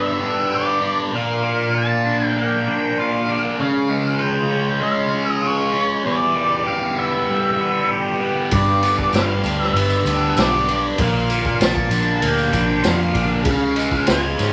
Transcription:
Already playing: distorted electric guitar G2 B3 D4 G4, transistor combo organ G3 B3 D4 B4 D5, lead electric guitar E5
0.20 distorted electric guitar D4
0.51 distorted electric guitar G4
0.56 lead electric guitar D5
0.81 distorted electric guitar D4
1.11 distorted electric guitar A#2, transistor combo organ F3 A#4 D5
1.15 transistor combo organ A#3, lead electric guitar F5
1.42 distorted electric guitar A#3
1.74 distorted electric guitar F4, lead electric guitar A5
2.05 distorted electric guitar D4
2.26 lead electric guitar G5
2.36 distorted electric guitar A#3, lead electric guitar G5
2.67 distorted electric guitar D4
2.98 distorted electric guitar F4, lead electric guitar F5
3.29 distorted electric guitar D4
3.58 distorted electric guitar C#3, transistor combo organ G#3 C#4 G#4 C#5, lead electric guitar F5
3.89 distorted electric guitar G#3
4.19 distorted electric guitar F4, lead electric guitar G5
4.50 distorted electric guitar C#4
4.81 distorted electric guitar G#3, lead electric guitar F5
5.11 distorted electric guitar C#4
5.32 lead electric guitar D#5
5.42 distorted electric guitar F4
5.47 lead electric guitar C#5
5.73 distorted electric guitar C#4
6.04 distorted electric guitar E2, transistor combo organ E3 G3 B3 G4 B4, lead electric guitar D5
6.34 distorted electric guitar G3
6.66 distorted electric guitar G4, lead electric guitar F5
6.97 distorted electric guitar B3, lead electric guitar E5
7.28 distorted electric guitar G3
7.60 distorted electric guitar B3
7.91 distorted electric guitar G4
8.20 distorted electric guitar B3
8.50 picked electric bass G1, distorted electric guitar G2, transistor combo organ D3 B4, lead electric guitar D5, kick, ride, tambourine
8.82 distorted electric guitar B3, ride, tambourine
8.98 kick
9.13 picked electric bass G1, distorted electric guitar G4, lead electric guitar F5, snare, ride, tambourine
9.44 picked electric bass D2, distorted electric guitar D4, ride, tambourine
9.60 lead electric guitar E5, snare
9.74 picked electric bass G1, distorted electric guitar B3, lead electric guitar E5, ride
9.90 tambourine
10.05 picked electric bass D2, distorted electric guitar D4, ride, tambourine
10.36 picked electric bass B1, distorted electric guitar G4, lead electric guitar D5, snare, ride, tambourine
10.67 distorted electric guitar D4, ride, tambourine
10.97 picked electric bass A#1, distorted electric guitar A#2, transistor combo organ F3 A#3 F4 A#4, kick, ride, tambourine
11.02 lead electric guitar F5
11.30 distorted electric guitar A#3, ride, tambourine
11.45 kick, tambourine
11.60 picked electric bass A#1, distorted electric guitar F4, snare, ride, tambourine
11.65 lead electric guitar A5
11.76 kick
11.90 picked electric bass A#1, distorted electric guitar D4, ride, tambourine
12.21 picked electric bass D2, distorted electric guitar A#3, ride
12.28 lead electric guitar G5
12.38 tambourine
12.52 picked electric bass A#1, distorted electric guitar D4, kick, ride, tambourine
12.82 picked electric bass F2, distorted electric guitar F4, snare, ride, tambourine
12.89 lead electric guitar F5
13.13 picked electric bass A#1, distorted electric guitar D4, kick, ride, tambourine
13.42 picked electric bass C#2, transistor combo organ C#3 G#3 F4 G#4, distorted electric guitar C#3, kick, ride
13.48 lead electric guitar F5, tambourine
13.76 distorted electric guitar G#3, ride, tambourine
13.91 kick, tambourine
14.07 picked electric bass C#2, distorted electric guitar F4, snare, ride, tambourine
14.12 lead electric guitar G#5
14.38 picked electric bass G#2, distorted electric guitar C#4, snare, ride, tambourine

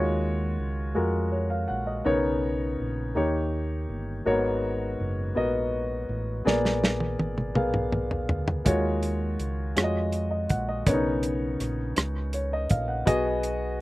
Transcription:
Already playing: fingered electric bass D#2, grand piano D#3 G#3 F4 F#4 C#5
0.59 fingered electric bass C#2
0.95 fingered electric bass F2, grand piano G#3 F4 F#4 A#4
1.32 grand piano C#5
1.50 grand piano F5
1.68 fingered electric bass A#1, grand piano F#5
1.87 grand piano D#5
2.04 fingered electric bass B1, grand piano C#3 B3 D#4 A#4 C#5
2.80 fingered electric bass A#1
3.15 fingered electric bass D#2, grand piano D#3 A#3 D#4 G4 C#5
3.89 fingered electric bass G1
4.25 fingered electric bass G#1, grand piano G#2 A#3 F#4 A#4 C#5
4.32 grand piano B3
5.00 fingered electric bass F#1
5.35 fingered electric bass A#1, grand piano B3 F#4 A#4 D#5
6.09 fingered electric bass A1
6.45 fingered electric bass A#1, grand piano A#2 B3 G#4 A#4 D5, snare
6.65 snare
6.84 snare
7.00 high tom
7.19 fingered electric bass G#1, high tom
7.38 mid tom
7.54 fingered electric bass B1, grand piano B3 G#4 A#4 F5, mid tom
7.74 mid tom
7.92 mid tom
8.11 floor tom
8.29 fingered electric bass D2, floor tom
8.48 floor tom
8.65 fingered electric bass D#2, grand piano D#3 G#3 F4 F#4 C#5, kick, closed hi-hat
9.03 closed hi-hat
9.40 fingered electric bass C#2, closed hi-hat
9.76 fingered electric bass F2, grand piano G#3 F4 F#4 C#5, cross-stick, closed hi-hat
9.84 grand piano D#5
10.12 closed hi-hat
10.31 grand piano D#5
10.49 fingered electric bass A#1, grand piano F#5, kick, closed hi-hat
10.69 grand piano D#5
10.86 fingered electric bass B1, grand piano C#3 B3 D4 A#4 C#5, kick, closed hi-hat
10.93 grand piano D#4
11.23 closed hi-hat
11.60 fingered electric bass A#1, cross-stick, closed hi-hat
11.96 fingered electric bass C#2, cross-stick, closed hi-hat
12.33 grand piano C#5, closed hi-hat
12.53 grand piano D#5
12.70 fingered electric bass A#1, grand piano F5, kick, closed hi-hat
12.88 grand piano F#5
13.05 fingered electric bass B1, grand piano B2 B3 F#4 G#4 D#5, kick, closed hi-hat
13.43 closed hi-hat

